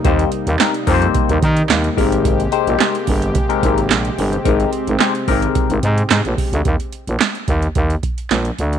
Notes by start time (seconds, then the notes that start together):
Already playing: C3 G3 A#3 D#4
0.04 D#2 A#3 C4 D#4 G4 C5, kick, closed hi-hat
0.19 closed hi-hat
0.32 closed hi-hat
0.47 D#2, closed hi-hat
0.59 A#3 C4 D#4 G4 A#4, snare, clap, closed hi-hat
0.74 closed hi-hat
0.87 F2 A#3 C4 D#4 G4 A#4, kick, open hi-hat
0.94 C5
1.02 closed hi-hat
1.15 kick, closed hi-hat
1.29 D#2, closed hi-hat
1.42 D#3, kick, closed hi-hat
1.57 closed hi-hat
1.69 D#2, snare, clap, closed hi-hat
1.84 closed hi-hat
1.97 G#1 G#3 C4 D#4 G4 A#4, kick, open hi-hat
2.12 closed hi-hat
2.25 kick, closed hi-hat
2.40 closed hi-hat
2.52 G#3 C4 D#4 G4 C5, closed hi-hat
2.67 A#1, closed hi-hat
2.80 snare, clap, closed hi-hat
2.95 closed hi-hat
3.07 G1, kick, open hi-hat
3.22 closed hi-hat
3.35 kick, closed hi-hat
3.49 G#3 C4 D#4 G4 A#4, closed hi-hat
3.63 G#1, kick, closed hi-hat
3.78 closed hi-hat
3.90 A#1, snare, clap, closed hi-hat
4.05 closed hi-hat
4.17 G1 C4 G4 C5, open hi-hat
4.32 G4 C5, closed hi-hat
4.44 G#1 G#3 C4 D#4 G4 A#4, kick, closed hi-hat
4.60 closed hi-hat
4.73 closed hi-hat
4.87 G#1, closed hi-hat
5.00 G#3 C4 D#4 G4 C5, snare, clap, closed hi-hat
5.15 closed hi-hat
5.27 G#1 G#3 C4 D#4 G4 A#4, kick, open hi-hat
5.42 closed hi-hat
5.55 kick, closed hi-hat
5.70 G#1, closed hi-hat
5.83 G#2, closed hi-hat
5.98 closed hi-hat
6.10 G#2, snare, clap, closed hi-hat
6.25 A#1, closed hi-hat
6.38 kick, open hi-hat
6.52 D2, closed hi-hat
6.65 D#2, kick, closed hi-hat
6.80 closed hi-hat
6.92 closed hi-hat
7.07 A#1, closed hi-hat
7.20 snare, clap, closed hi-hat
7.35 closed hi-hat
7.48 D#2, kick, closed hi-hat
7.62 closed hi-hat
7.75 D#2, kick, closed hi-hat
7.90 closed hi-hat
8.03 kick, closed hi-hat
8.18 closed hi-hat
8.30 A#1, snare, clap, closed hi-hat
8.45 closed hi-hat
8.59 D2, closed hi-hat
8.73 closed hi-hat